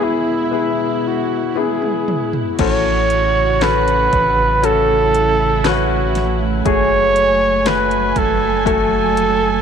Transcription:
Already playing: grand piano E2 E3 F#4, string section B2 G#3 E4
0.00 grand piano B3 E4 G#4, flugelhorn E4
0.51 grand piano B3 E4 G#4
1.07 flugelhorn F#4
1.56 grand piano B3 E4 G#4, flugelhorn G#4, high tom
1.82 mid tom
2.08 mid tom
2.33 floor tom
2.59 sub bass A1, grand piano A2 C#4 F#4 A4, string section C#3 A3 F#4, flugelhorn C#5, kick, closed hi-hat, crash
3.10 closed hi-hat
3.61 grand piano C#4 F#4 A4, flugelhorn B4, snare, closed hi-hat
3.88 closed hi-hat
4.13 sub bass A1, kick, closed hi-hat
4.62 grand piano C#4 F#4 A4, string section E4, flugelhorn A4, closed hi-hat
5.15 closed hi-hat
5.64 grand piano C#4 F#4 B4, flugelhorn F#4, snare, closed hi-hat
6.15 snare, closed hi-hat
6.64 sub bass F#1, string section F#3 G#5, grand piano A3 F#4 G#4, flugelhorn C#5, kick, closed hi-hat
7.16 closed hi-hat
7.65 grand piano A3 F#4 B4, flugelhorn B4, snare, closed hi-hat
7.91 closed hi-hat
8.16 sub bass F#1, flugelhorn A4, kick, closed hi-hat
8.65 grand piano A3 F#4 A4, flugelhorn A4, kick, closed hi-hat
9.17 closed hi-hat

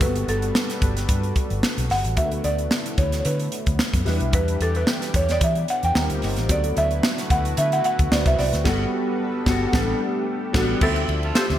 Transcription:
Already playing: analog synth pad F#4
0.00 fingered electric bass G1, grand piano G3 A#3 F#4 A4, analog synth pad G3 D4 A4 B4, marimba B4, kick, closed hi-hat
0.07 grand piano B3
0.16 closed hi-hat
0.28 fingered electric bass G1, marimba A4, closed hi-hat
0.42 closed hi-hat
0.55 snare
0.70 snare, closed hi-hat
0.82 fingered electric bass G1, kick, closed hi-hat
0.97 snare, closed hi-hat
1.09 fingered electric bass G2, kick, closed hi-hat
1.23 closed hi-hat
1.36 kick, closed hi-hat
1.50 fingered electric bass G1, closed hi-hat
1.63 snare
1.78 fingered electric bass B1, closed hi-hat
1.90 fingered electric bass G1, marimba F#5, snare, open hi-hat
2.04 fingered electric bass A1, closed hi-hat
2.16 fingered electric bass D2, analog synth pad D3 A3 B3 E4, grand piano A3 D4 F#4 A#4, marimba E5, kick, closed hi-hat
2.25 grand piano B4
2.32 closed hi-hat
2.44 fingered electric bass D2, marimba D5, closed hi-hat
2.59 closed hi-hat
2.71 snare
2.86 closed hi-hat
2.98 fingered electric bass D2, marimba C#5, kick, closed hi-hat
3.12 snare, closed hi-hat
3.20 marimba C#5
3.25 fingered electric bass D3, marimba B4, closed hi-hat
3.40 closed hi-hat
3.52 closed hi-hat
3.66 fingered electric bass D2, kick, closed hi-hat
3.79 snare
3.94 fingered electric bass F#2, kick, closed hi-hat
4.05 fingered electric bass E2, analog synth pad E3 D4 G4, grand piano G3 D4 E4 B4, snare, open hi-hat
4.20 fingered electric bass B1, closed hi-hat
4.33 fingered electric bass E2, marimba B4, kick, closed hi-hat
4.48 closed hi-hat
4.60 fingered electric bass E2, marimba A4, closed hi-hat
4.75 marimba B4, closed hi-hat
4.87 snare
5.02 snare, closed hi-hat
5.14 fingered electric bass E2, marimba C#5, kick, closed hi-hat
5.29 marimba D5, snare, closed hi-hat
5.41 fingered electric bass E3, marimba E5, kick, closed hi-hat
5.55 closed hi-hat
5.68 marimba F#5, closed hi-hat
5.83 fingered electric bass E2, marimba G5, closed hi-hat
5.95 fingered electric bass D#2, analog synth pad D#3 A#3 C4 F4 G4, grand piano G3 C4 D#4 A#4, snare
6.10 fingered electric bass D2, closed hi-hat
6.22 fingered electric bass G1, snare, open hi-hat
6.37 fingered electric bass A1, snare, closed hi-hat
6.48 fingered electric bass D2, analog synth pad D3 A3 E4 F#4 B4, grand piano F#3 B3 D4 A4, marimba D5, kick, closed hi-hat
6.64 closed hi-hat
6.77 fingered electric bass D2, marimba E5, closed hi-hat
6.91 closed hi-hat
7.03 snare
7.18 snare, closed hi-hat
7.30 fingered electric bass D2, marimba F#5, kick, closed hi-hat
7.45 closed hi-hat
7.57 fingered electric bass D3, marimba E5, closed hi-hat
7.72 marimba F#5, closed hi-hat
7.84 marimba F#5, closed hi-hat
7.99 fingered electric bass D2, kick, closed hi-hat
8.11 fingered electric bass D2, grand piano F#3 C4 E4 B4, analog synth pad C4, marimba D5, snare
8.26 fingered electric bass C2, marimba E5, kick, closed hi-hat
8.39 fingered electric bass C2, marimba D5, snare, open hi-hat
8.53 fingered electric bass D2, snare, closed hi-hat
8.64 fingered electric bass G1, grand piano G3 B3 F#4 A4, analog synth pad G3 D4 A4 B4, kick, snare, crash
9.45 fingered electric bass G1, grand piano G3 B3 F#4 A4, kick, snare
9.72 fingered electric bass A1, grand piano G3 B3 D4 A4, analog synth pad A3 G4, kick, snare
10.53 fingered electric bass A1, grand piano G3 B3 D4 A4, marimba F#4, kick, snare, crash
10.80 fingered electric bass D2, grand piano F3 C4 D4 A4 E5, horn section C4 E4 G4, analog synth pad F4 D5 E5 C6, marimba A4, kick, crash
10.96 ride
11.08 fingered electric bass D2, ride
11.23 horn section A3 F4 A4, ride
11.35 horn section F4 A4 C5, marimba G4, snare, ride
11.50 fingered electric bass D2, snare, ride

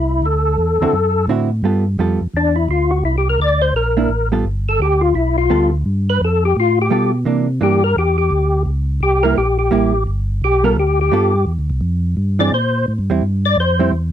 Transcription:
Already playing: tonewheel organ C2 E4
0.22 tonewheel organ D2 A4
0.58 tonewheel organ E2
0.80 tonewheel organ E2, hollow-body jazz guitar D3 C4 E4 F#4
0.93 tonewheel organ F#2
1.28 tonewheel organ A2, hollow-body jazz guitar D3 C4 E4 F#4
1.62 tonewheel organ G2, hollow-body jazz guitar G3 B3 F4 A4
1.98 tonewheel organ F2, hollow-body jazz guitar G3 B3 F4 A4
2.21 tonewheel organ F2
2.34 tonewheel organ E2 D4
2.56 tonewheel organ E4
2.69 tonewheel organ D2 F4
2.91 tonewheel organ F#4
3.04 tonewheel organ C2 E4
3.18 tonewheel organ G4
3.29 tonewheel organ A#4
3.39 tonewheel organ D2 D5
3.62 tonewheel organ C5
3.73 tonewheel organ A#1 A#4
3.97 hollow-body jazz guitar A#3 D4 E4
4.09 tonewheel organ A1
4.32 hollow-body jazz guitar G3 B3 F4 A4
4.44 tonewheel organ G1
4.69 tonewheel organ A4
4.79 tonewheel organ D2 G4
5.01 tonewheel organ F4
5.15 tonewheel organ B1 E4
5.38 tonewheel organ F4
5.50 tonewheel organ D2, hollow-body jazz guitar G3 B3 F4 A4
5.85 tonewheel organ G2
6.10 tonewheel organ B4
6.21 tonewheel organ F2 A4
6.45 tonewheel organ G4
6.56 tonewheel organ A2 F4
6.82 tonewheel organ G4
6.90 tonewheel organ B2, hollow-body jazz guitar G3 B3 F4 A4
7.25 tonewheel organ C3, hollow-body jazz guitar E3 A#3 D4
7.61 tonewheel organ G2 G4, hollow-body jazz guitar E3 A#3 D4
7.84 tonewheel organ A#4
7.96 tonewheel organ E2 G4
8.18 tonewheel organ G4
8.31 tonewheel organ D2
8.66 tonewheel organ C#2
9.01 tonewheel organ C2 G4
9.23 hollow-body jazz guitar G3 A#3 E4, tonewheel organ A#4
9.36 tonewheel organ A#1 G4
9.59 tonewheel organ G4
9.71 tonewheel organ A1, hollow-body jazz guitar G3 A#3 E4
10.07 tonewheel organ G1
10.42 tonewheel organ B1 G4
10.64 hollow-body jazz guitar G3 B3 F4 A4, tonewheel organ A#4
10.76 tonewheel organ D2 G4
11.01 tonewheel organ G4
11.11 tonewheel organ G2, hollow-body jazz guitar G3 B3 F4 A4
11.47 tonewheel organ E2
11.59 tonewheel organ D2
11.70 tonewheel organ C2
11.81 tonewheel organ F2
12.17 tonewheel organ G2
12.39 hollow-body jazz guitar E3 C4 D4 G#4, tonewheel organ D5
12.52 tonewheel organ A#2 C5
12.88 tonewheel organ A2
12.99 tonewheel organ G2
13.10 tonewheel organ E2, hollow-body jazz guitar G3 C4 E4
13.22 tonewheel organ G2
13.45 tonewheel organ D5
13.57 tonewheel organ F2 C5
13.79 hollow-body jazz guitar G3 C4 E4
13.92 tonewheel organ E2

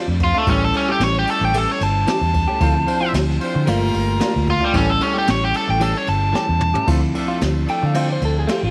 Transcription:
Already playing: tine electric piano A3 C4 D4
0.08 fingered electric bass F2, muted clean electric guitar stroke
0.20 overdriven electric guitar F4, muted clean electric guitar stroke, kick, ride
0.35 clean electric guitar A3 D4 F4, overdriven electric guitar A3
0.47 fingered electric bass A1, clean electric guitar E3 A3 C#4 G4, tine electric piano G3 C#4 E4, horn section A3 C#4 G4 A4, overdriven electric guitar C#4, kick, ride
0.62 overdriven electric guitar A4, muted clean electric guitar stroke
0.73 horn section A3 C#4 G4 A4, overdriven electric guitar C#4, muted clean electric guitar stroke, ride
0.89 clean electric guitar A3 C#4 G4, overdriven electric guitar G4
1.00 fingered electric bass A1, overdriven electric guitar C#5, snare, ride
1.19 overdriven electric guitar G4
1.27 horn section A3 C#4 G4 A4, overdriven electric guitar A4, ride
1.41 fingered electric bass A1, overdriven electric guitar G5, muted clean electric guitar stroke
1.54 clean electric guitar E3 A3 C#4 G4, overdriven electric guitar A4, ride
1.69 overdriven electric guitar C#5, muted clean electric guitar stroke
1.81 fingered electric bass G1, overdriven electric guitar A5, muted clean electric guitar stroke, ride
2.07 clean electric guitar E3 A3 C#4 G4, overdriven electric guitar A5, snare, ride
2.21 fingered electric bass E2, muted clean electric guitar stroke
2.34 muted clean electric guitar stroke, kick, ride
2.48 clean electric guitar A3 C#4 G4
2.60 fingered electric bass D2, tine electric piano F3 C4 E4, clean electric guitar A3 C4 F4, horn section C4 D4 F4 C5, kick, ride
2.75 muted clean electric guitar stroke
2.86 horn section C4 D4 F4 C5, muted clean electric guitar stroke, ride
3.01 clean electric guitar C4 F4
3.14 fingered electric bass D2, muted clean electric guitar stroke, snare, ride
3.40 horn section C4 D4 F4 C5, ride
3.55 fingered electric bass D3, muted clean electric guitar stroke
3.65 fingered electric bass G1, clean electric guitar F3 A#3 D4 F4, tine electric piano A3 A#3 F4, horn section F4 G4 A#4 A#5, ride
3.82 muted clean electric guitar stroke
3.93 fingered electric bass G1, muted clean electric guitar stroke, ride
4.20 clean electric guitar F3 A#3 D4 F4, snare, ride
4.35 fingered electric bass D2, muted clean electric guitar stroke
4.47 overdriven electric guitar F4, muted clean electric guitar stroke, kick, ride
4.61 overdriven electric guitar G3, clean electric guitar A#3 D4 F4
4.73 fingered electric bass A1, clean electric guitar E3 A3 C#4 G4, tine electric piano G3 C#4 E4, horn section A3 C#4 G4 A4, overdriven electric guitar C#4, kick, ride
4.90 overdriven electric guitar A4
5.00 horn section A3 C#4 G4 A4, overdriven electric guitar C#4, muted clean electric guitar stroke, ride
5.14 clean electric guitar A3 C#4 G4
5.18 overdriven electric guitar G4
5.26 fingered electric bass A1, overdriven electric guitar C#5, muted clean electric guitar stroke, snare, ride
5.44 overdriven electric guitar G4
5.54 horn section A3 C#4 G4 A4, overdriven electric guitar A4, ride
5.68 fingered electric bass A1, overdriven electric guitar G5, muted clean electric guitar stroke
5.80 clean electric guitar E3 A3 C#4 G4, overdriven electric guitar A4, ride
5.95 overdriven electric guitar C#5, muted clean electric guitar stroke
6.07 fingered electric bass G1, overdriven electric guitar A5, muted clean electric guitar stroke, ride
6.33 clean electric guitar E3 A3 C#4 G4, overdriven electric guitar A5, snare
6.48 fingered electric bass E2, muted clean electric guitar stroke
6.60 muted clean electric guitar stroke, mid tom
6.74 clean electric guitar A3 C#4 G4, floor tom
6.86 fingered electric bass D2, tine electric piano F3 C4 E4, clean electric guitar A3 C4 F4, horn section A3 C4 D4 F4 A4, kick, crash
7.14 horn section A3 C4 D4 F4 A4, muted clean electric guitar stroke, ride
7.28 clean electric guitar C4 F4
7.41 fingered electric bass D2, muted clean electric guitar stroke, snare, ride
7.66 horn section A3 C4 D4 A4, clean electric guitar G5, ride
7.83 fingered electric bass D3, clean electric guitar F5, muted clean electric guitar stroke
7.94 clean electric guitar A3 C4 F4 D5, ride
8.09 clean electric guitar C5, muted clean electric guitar stroke
8.22 fingered electric bass D2, clean electric guitar A4, muted clean electric guitar stroke, ride
8.39 clean electric guitar G#4
8.47 clean electric guitar A3 C4 F4 G4, snare, ride
8.63 fingered electric bass A1, clean electric guitar F4, muted clean electric guitar stroke

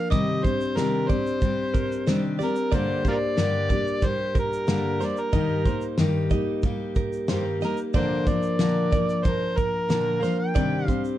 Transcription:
Already playing: steel-string acoustic guitar F3 A#3 D4 A#4
0.10 steel-string acoustic guitar C3 D#3 G3 C4 G4, harmonica D#5, clean electric guitar D6, kick, shaker
0.43 steel-string acoustic guitar G3 C4 D4 G4, harmonica C5, clean electric guitar C5, kick, shaker
0.61 shaker
0.76 steel-string acoustic guitar C3 D#3 G3 C4 D4 G4, harmonica A#4, snare, shaker
1.08 steel-string acoustic guitar G3 C4 D4 G4, harmonica C5, clean electric guitar D5, kick, shaker
1.26 shaker
1.41 steel-string acoustic guitar G3 C4 D4 G4, kick, shaker
1.74 clean electric guitar A#4, kick, shaker
1.92 shaker
2.06 steel-string acoustic guitar C3 D#3 G3 C4 D4 G4, clean electric guitar C5, snare, shaker
2.39 steel-string acoustic guitar G3 C4 D4 G4, clean electric guitar D5, snare, shaker
2.43 harmonica A#4
2.56 shaker
2.72 steel-string acoustic guitar G2 D3 G3 A#3 D4 G4, harmonica C5, clean electric guitar D5, kick, shaker
3.04 steel-string acoustic guitar G3 A#3 D4 G4, harmonica F4 A#4 D5, clean electric guitar C5, kick, shaker
3.37 steel-string acoustic guitar G2 D3 G3 A#3 D4 G4, snare, shaker
3.69 steel-string acoustic guitar A#3 D4 G4, clean electric guitar D5, kick, shaker
3.74 steel-string acoustic guitar G3
3.87 shaker
4.02 steel-string acoustic guitar G3 A#3 D4 G4, harmonica C5, kick, shaker
4.35 clean electric guitar A#4, kick, shaker
4.39 harmonica A#4
4.53 shaker
4.67 steel-string acoustic guitar G2 D3 G3 A#3 D4 G4, snare, shaker
5.00 steel-string acoustic guitar G3 A#3 D4 G4, clean electric guitar C5, snare, shaker
5.05 harmonica D5
5.17 harmonica A#4, shaker
5.33 steel-string acoustic guitar G2 D#3 G3 A#3 D#4 G4, clean electric guitar D#5, kick, shaker
5.65 steel-string acoustic guitar G3 A#3 D#4 G4, clean electric guitar C5, kick, shaker
5.81 shaker
5.98 steel-string acoustic guitar G2 D#3 G3 A#3 D#4 G4, snare, shaker
6.30 steel-string acoustic guitar A#3 D#4 G4, clean electric guitar D#5, kick, shaker
6.34 steel-string acoustic guitar G3
6.63 steel-string acoustic guitar G3 A#3 D#4, kick, shaker
6.67 steel-string acoustic guitar G4
6.96 clean electric guitar A#4, kick, shaker
7.13 shaker
7.28 steel-string acoustic guitar G2 D#3 G3 A#3 D#4 G4, clean electric guitar C5, snare, shaker
7.61 steel-string acoustic guitar G3 A#3 D#4 G4, harmonica A#4, clean electric guitar D#5, snare, shaker
7.77 shaker
7.94 steel-string acoustic guitar A#2 D3 F3 A#3 D4 A#4, harmonica C5, clean electric guitar D5, kick, shaker
8.26 steel-string acoustic guitar F3 A#3 D4 A#4, clean electric guitar C5, harmonica D5, kick, shaker
8.43 shaker
8.59 steel-string acoustic guitar A#2 D3 F3 A#3 D4 A#4, snare, shaker
8.92 steel-string acoustic guitar F3 A#3 D4 A#4, clean electric guitar D5, kick, shaker
9.09 shaker
9.24 steel-string acoustic guitar F3 A#3 D4 A#4, harmonica C5, kick, shaker
9.57 harmonica A#4, clean electric guitar A#4, kick, shaker
9.89 steel-string acoustic guitar A#2 D3 F3 A#3 D4 A#4, snare, shaker
10.21 steel-string acoustic guitar F3 A#3 D4 A#4, clean electric guitar C5, harmonica F5, snare, shaker
10.39 harmonica G5
10.54 steel-string acoustic guitar C3 D#3 G3 C4 D4 G4, clean electric guitar D5, kick, shaker
10.86 steel-string acoustic guitar C4 D4 G4, clean electric guitar C5, harmonica F5, kick, shaker
10.90 steel-string acoustic guitar G3
11.05 shaker

